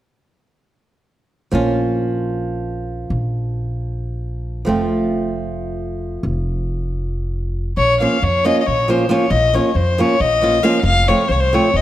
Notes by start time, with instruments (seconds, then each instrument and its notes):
1.51 upright bass A#1, nylon-string guitar F3 A#3 C#4 F4
3.10 upright bass A#1
4.65 upright bass F1, nylon-string guitar F3 A3 C4 F4
6.23 upright bass F1
7.77 upright bass A#1, violin C#5
8.00 nylon-string guitar F3 A#3 C#4 F4, violin F5
8.22 upright bass F2, violin C#5
8.44 nylon-string guitar F3 A#3 C#4 F4, violin D#5
8.61 violin D#5
8.66 upright bass A#1, violin C#5
8.88 nylon-string guitar F3 A#3 C#4 F4, violin C5
9.09 nylon-string guitar F3 A#3 C#4 F4
9.13 violin C#5
9.30 upright bass A#1, violin D#5
9.54 nylon-string guitar F3 A#3 C#4 F4, violin C#5
9.75 upright bass F2, violin C5
9.98 nylon-string guitar F3 A#3 C#4 F4, violin C#5
10.20 upright bass A#1, violin D#5
10.42 nylon-string guitar F3 A#3 C#4 F4
10.63 nylon-string guitar F3 A#3 C#4 F4, violin F5
10.83 upright bass F1, violin F5
11.08 nylon-string guitar F3 A3 C4 F4, violin C#5
11.28 upright bass C2, violin C5 C#5
11.40 violin C5
11.53 nylon-string guitar F3 A3 C4 F4, violin C#5
11.74 upright bass F1, violin D#5